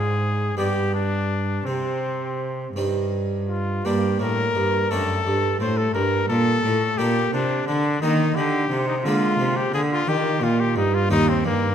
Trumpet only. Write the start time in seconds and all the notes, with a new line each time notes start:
Already playing: G#4
0.58 G4
0.95 D4
1.66 C4
3.49 F4
3.86 G4
4.20 A#4
4.91 A4
5.61 C5
5.78 A4
5.94 A#4
6.29 A4
6.98 G4
7.33 D4
7.68 D4
8.02 D#4
8.36 G4
8.88 D#4
9.05 F4
9.57 G4
9.74 G#4
9.93 F4
10.09 G4
10.44 F4
10.60 G4
10.78 D#4
10.95 F4
11.11 D#4
11.29 C4
11.46 A#3